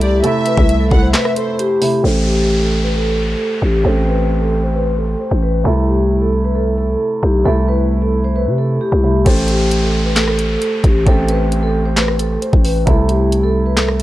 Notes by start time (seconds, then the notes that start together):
Already playing: C2 C3 A3 E4
0.01 G4 D5, closed hi-hat
0.23 C3 A3 E4 A4 E5, closed hi-hat
0.46 B4, closed hi-hat
0.57 C2, kick
0.69 closed hi-hat
0.80 A4
0.91 C2 F#5, kick
1.02 C5
1.13 B4 E5, snare, clap, closed hi-hat
1.25 cross-stick
1.36 A4 C5, closed hi-hat
1.59 G4, closed hi-hat
1.81 C3 A3 E4, open hi-hat
2.03 A1 A3 G4 C5, downlifter
2.27 G4
2.83 B4
2.95 A4
3.17 A4
3.62 A1 G4
3.83 A1 A3 C4 G4 A4
4.07 B4
4.41 A4
4.63 C5
4.75 B4
4.98 A4
5.20 C5
5.31 A1
5.43 B4
5.64 C2 C3 A3 E4 A4
5.88 G4
6.22 A4
6.44 B4
6.55 A4
6.78 A4
7.23 B1 G4
7.44 C2 C3 A3 E4 A4
7.68 B4
8.02 A4
8.24 C5
8.36 B4
8.47 C3
8.58 A4
8.81 G4
8.92 C2
9.03 C3 A3 E4
9.25 A1 A3 G4 A4 C5, kick, closed hi-hat, crash, downlifter
9.48 G4, closed hi-hat
9.71 closed hi-hat
9.83 A4
10.05 B4
10.16 A4, snare, clap, closed hi-hat
10.28 cross-stick
10.39 A4, closed hi-hat
10.62 closed hi-hat
10.84 A1 G4, kick, closed hi-hat
11.05 A1 A3 C4 G4 A4, kick, closed hi-hat
11.29 B4, closed hi-hat
11.52 closed hi-hat
11.63 A4
11.86 C5
11.97 B4, snare, clap, closed hi-hat
12.08 cross-stick
12.19 A4, closed hi-hat
12.42 C5, closed hi-hat
12.53 A1, kick
12.65 B4, open hi-hat
12.86 C2 C3 A3 E4 A4, kick, closed hi-hat
13.09 G4, closed hi-hat
13.32 closed hi-hat
13.43 A4
13.66 B4
13.77 A4, snare, clap, closed hi-hat
13.88 cross-stick